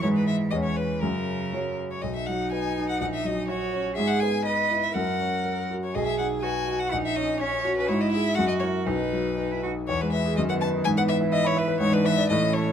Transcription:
<<
  \new Staff \with { instrumentName = "Violin" } { \time 2/4 \key b \major \tempo 4 = 123 cis''16 b'16 e''8 dis''16 cis''16 b'8 | ais'4. r16 cis''16 | dis''16 e''16 fis''8 gis''8. fis''16 | fis''16 e''16 dis''8 cis''8. r16 |
e''16 fis''16 gis''8 dis''8. e''16 | fis''4. r16 cis''16 | dis''16 e''16 fis''8 gis''8. fis''16 | fis''16 e''16 dis''8 cis''8. b'16 |
cis''16 dis''16 e''8 fis''16 dis''16 cis''8 | b'4. r8 | \key e \major cis''16 b'16 e''8 dis''16 fis''16 a''8 | gis''16 fis''16 e''8 dis''16 cis''16 b'8 |
cis''16 b'16 e''8 dis''8 cis''8 | }
  \new Staff \with { instrumentName = "Cello" } { \time 2/4 \key b \major e2 | cis4. r8 | dis'2~ | dis'4 fis'4 |
gis'4 b'4 | ais'4. r8 | gis'4 fis'4 | dis'4 cis'4 |
e'4 fis'4 | dis'4 dis'16 e'16 fis'8 | \key e \major e4 dis4 | e2 |
e4 e4 | }
  \new Staff \with { instrumentName = "Grand piano" } { \time 2/4 \key b \major <gis, gis dis' b'>4 <e, gis cis' cis''>4 | fis,4 <fis cis' cis''>4 | b,,8 fis8 b'8 dis'8 | ais,,8 fis8 cis''8 cis'8 |
gis,8 b8 b'8 e'8 | fis,8 cis'8 ais'8 fis'8 | b,,8 dis'8 b'8 fis'8 | ais,,8 cis'8 cis''8 fis'8 |
gis,8 <e' gis'>8 fis,8 <e' ais'>8 | b,,8 fis8 b'8 dis'8 | \key e \major e,16 gis16 b'16 gis'16 fis,16 b16 b'16 dis'16 | gis,16 b16 b'16 e'16 e''16 b''16 e''16 b'16 |
gis,16 d'16 b'16 d''16 a,16 cis'16 a'16 cis''16 | }
>>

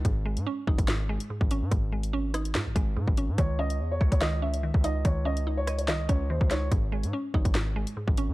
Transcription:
<<
  \new Staff \with { instrumentName = "Grand piano" } { \time 4/4 \key gis \phrygian \tempo 4 = 144 r1 | r1 | cis''8 dis''8. cis''8 cis''16 dis''8 e''4 dis''8 | cis''8 dis''8. cis''8 cis''16 dis''8 cis''8 bis'8 cis''8 |
r1 | }
  \new Staff \with { instrumentName = "Synth pluck" } { \clef bass \time 4/4 \key gis \phrygian gis,8 gis8 cis'8 dis'8 gis,8 gis8 gis,8 cis'8 | gis,8 gis8 cis'8 dis'8 gis,8 gis8 gis,8 cis'8 | dis8 cis'4 cis''8 dis8 cis'8 dis8 dis'8 | dis8 cis'8 dis'8 dis''8 dis8 cis'8 dis8 dis'8 |
gis,8 gis8 cis'8 dis'8 gis,8 gis8 gis,8 cis'8 | }
  \new Staff \with { instrumentName = "808-style bass" } { \clef bass \time 4/4 \key gis \phrygian gis,,8. gis,16 r8 gis,,16 gis,,4 r8 gis,,8 gis,16 | gis,,2 gis,16 gis,,16 gis,,8 gis,16 gis,,8 gis,16 | cis,4 e,8 cis,16 cis,4. cis,8. | cis,2 bis,,16 cis,16 cis,8 dis,16 cis,8. |
gis,,8. gis,16 r8 gis,,16 gis,,4 r8 gis,,8 gis,16 | }
  \new DrumStaff \with { instrumentName = "Drums" } \drummode { \time 4/4 <hh bd>8. hh16 r8 bd16 <hh bd>16 <hh sn>8. hh16 r16 bd16 hh8 | <hh bd>8. hh16 r8 <hh ss>16 hh16 <hh sn>8 <hh bd>8 r16 bd16 hh8 | <hh bd>8. hh16 r8 bd16 <hh bd>16 <hh sn>8. hh16 r16 bd16 hh8 | <hh bd>8. hh16 r8 <hh ss>16 hh16 <hh sn>8 <hh bd>8 r16 bd16 <hh sn>8 |
<hh bd>8. hh16 r8 bd16 <hh bd>16 <hh sn>8. hh16 r16 bd16 hh8 | }
>>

